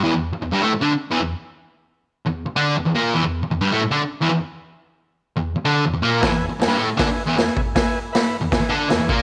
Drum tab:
HH |--------|--------|--------|--------|
SD |--------|--------|--------|--------|
BD |--------|--------|--------|--------|

HH |o-o-o-o-|o-o-o-o-|
SD |o-o-o-o-|o-o-o-o-|
BD |o---o--o|o---o--o|